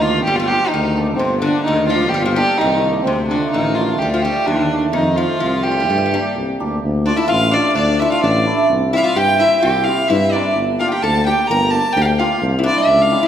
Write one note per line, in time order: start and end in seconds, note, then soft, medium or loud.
0.00 0.29 D2 medium
0.00 0.28 D#3 medium
0.00 0.15 A#3 medium
0.00 0.24 F4 loud
0.04 0.15 D4 soft
0.04 0.15 G4 medium
0.24 0.55 G1 medium
0.24 0.39 G3 medium
0.24 0.38 G4 medium
0.36 0.73 F3 medium
0.36 0.49 F4 medium
0.48 0.62 A#3 medium
0.48 0.62 D4 medium
0.48 0.70 G4 loud
0.48 0.62 G4 medium
0.69 1.06 D#4 medium
0.74 1.22 D2 medium
0.74 1.06 D#3 medium
0.97 1.09 A#3 medium
0.97 1.08 D4 medium
0.97 1.09 A4 medium
1.15 1.42 C3 medium
1.15 1.39 C4 medium
1.21 1.49 G1 medium
1.40 1.64 D3 medium
1.40 1.63 D4 medium
1.44 1.56 A#3 medium
1.44 1.56 D4 medium
1.44 1.56 G4 medium
1.64 2.16 D2 medium
1.64 1.89 D#3 medium
1.64 1.87 D#4 loud
1.87 2.14 F3 medium
1.87 2.02 A#3 medium
1.87 2.10 F4 medium
1.87 2.02 G4 medium
1.92 2.03 D4 medium
2.09 2.24 G4 medium
2.14 2.42 G1 loud
2.14 2.25 G3 medium
2.22 2.37 F3 medium
2.22 2.33 F4 medium
2.33 2.61 G3 medium
2.33 2.49 A#3 medium
2.33 2.49 D4 medium
2.33 2.59 G4 loud
2.33 2.49 A4 medium
2.58 3.09 C2 medium
2.58 2.93 D#3 medium
2.58 2.94 D#4 loud
2.84 2.96 A#3 medium
2.84 2.96 D4 medium
2.84 2.96 G4 medium
3.03 3.26 C4 medium
3.07 3.36 D2 medium
3.07 3.31 C3 medium
3.27 3.49 D4 medium
3.31 3.54 D3 medium
3.31 3.43 A3 medium
3.31 3.43 D4 medium
3.31 3.44 F4 medium
3.50 3.76 D#4 medium
3.54 4.02 A1 medium
3.54 4.03 D#3 medium
3.75 4.00 F4 medium
3.75 3.90 F4 medium
3.79 3.90 A3 medium
3.79 3.90 D4 soft
3.98 4.29 D2 medium
3.98 4.12 G3 medium
3.98 4.11 G4 medium
4.11 4.24 F3 medium
4.11 4.23 F4 medium
4.22 4.47 G3 medium
4.22 4.37 A3 medium
4.22 4.37 D4 soft
4.22 4.48 G4 medium
4.26 4.37 G4 medium
4.46 4.97 D#2 medium
4.46 4.80 D3 medium
4.46 4.82 D4 medium
4.73 4.84 A3 medium
4.73 4.84 D4 medium
4.73 4.84 G4 medium
4.92 5.24 F2 medium
4.92 5.16 D#3 medium
4.92 5.18 D#4 medium
5.16 5.39 F3 medium
5.16 5.64 F4 medium
5.21 5.31 A3 medium
5.21 5.31 C4 soft
5.21 5.32 F4 medium
5.40 5.90 C2 medium
5.40 5.65 F3 medium
5.63 5.73 G3 medium
5.63 5.78 A3 medium
5.63 5.78 C4 medium
5.63 5.78 F4 medium
5.63 6.34 G4 medium
5.72 5.81 A3 soft
5.80 5.89 G3 medium
5.89 6.17 G2 medium
5.89 5.98 A3 medium
5.98 6.06 G3 medium
6.06 6.14 A3 medium
6.14 6.34 G3 medium
6.14 6.25 A#3 medium
6.14 6.25 D4 medium
6.14 6.25 G4 medium
6.36 6.57 C2 medium
6.60 6.81 D2 medium
6.60 6.71 A#3 medium
6.60 6.72 D4 medium
6.60 6.71 G4 medium
6.84 7.11 D2 medium
7.06 7.18 A3 medium
7.06 7.17 D4 medium
7.06 7.18 D4 medium
7.06 7.18 F4 medium
7.06 7.18 D5 loud
7.17 7.27 E4 medium
7.17 7.31 E5 medium
7.28 7.58 A1 medium
7.28 7.51 F4 medium
7.28 7.55 F5 loud
7.51 7.65 A3 medium
7.51 7.74 D4 medium
7.51 7.65 D4 medium
7.51 7.65 F4 medium
7.51 7.76 D5 loud
7.75 8.04 D2 medium
7.75 7.97 D4 medium
7.75 8.01 D5 medium
7.99 8.11 A3 medium
7.99 8.11 D4 medium
7.99 8.12 E4 medium
7.99 8.12 F4 medium
7.99 8.11 E5 medium
8.12 8.22 F4 medium
8.12 8.22 F5 medium
8.23 8.51 A1 loud
8.23 8.67 D4 medium
8.23 8.66 D5 medium
8.46 8.58 A3 medium
8.46 8.58 D4 medium
8.46 8.58 E4 medium
8.70 8.98 C2 medium
8.93 9.05 C4 medium
8.93 8.97 E4 medium
8.93 9.05 E4 medium
8.93 9.05 G4 medium
8.93 8.98 E5 medium
8.93 9.01 F5 medium
8.98 9.03 E4 medium
8.98 9.06 E5 loud
9.04 9.16 F4 medium
9.04 9.18 F5 medium
9.16 9.44 G2 medium
9.16 9.40 G4 medium
9.16 9.40 G5 loud
9.38 9.52 C4 medium
9.38 9.63 E4 medium
9.38 9.52 E4 medium
9.38 9.51 A#4 medium
9.38 9.60 E5 loud
9.61 9.91 C2 medium
9.61 10.06 G4 medium
9.61 9.85 G5 medium
9.84 10.09 F5 medium
9.88 9.98 C4 medium
9.88 9.99 E4 soft
9.88 9.99 G4 medium
10.08 10.38 G2 loud
10.08 10.31 E4 medium
10.08 10.33 E5 medium
10.32 10.45 C4 medium
10.32 10.54 D4 medium
10.32 10.45 E4 soft
10.32 10.45 A#4 medium
10.32 10.55 D5 medium
10.56 10.84 G1 medium
10.79 10.91 A#3 medium
10.79 10.91 D4 medium
10.79 10.92 F4 medium
10.79 10.91 G4 medium
10.79 10.89 F5 medium
10.90 11.03 G4 medium
10.90 11.04 G5 medium
11.02 11.31 D2 medium
11.02 11.27 A4 medium
11.02 11.25 A5 loud
11.26 11.38 A#3 medium
11.26 11.37 D4 medium
11.26 11.50 G4 medium
11.26 11.38 G4 medium
11.26 11.49 G5 medium
11.47 11.77 G1 medium
11.47 11.97 A#4 medium
11.47 11.72 A#5 loud
11.71 11.84 A#3 medium
11.71 11.84 D4 medium
11.71 11.84 G4 medium
11.71 11.94 A5 loud
11.93 12.23 D2 loud
11.93 12.03 G5 loud
11.97 12.19 G4 medium
12.01 12.07 F5 medium
12.01 12.20 G5 medium
12.19 12.30 A#3 medium
12.19 12.30 D4 medium
12.19 12.40 F4 medium
12.19 12.30 F4 medium
12.19 12.41 F5 medium
12.42 12.70 C2 loud
12.59 12.65 E4 medium
12.63 12.77 C4 medium
12.63 13.18 D4 medium
12.63 12.77 E4 medium
12.63 12.77 G4 medium
12.63 12.79 D5 loud
12.78 13.03 E5 medium
12.88 13.16 C#2 medium
13.02 13.27 F5 medium
13.12 13.23 C4 medium
13.12 13.23 E4 medium
13.12 13.23 G4 medium
13.23 13.27 E4 medium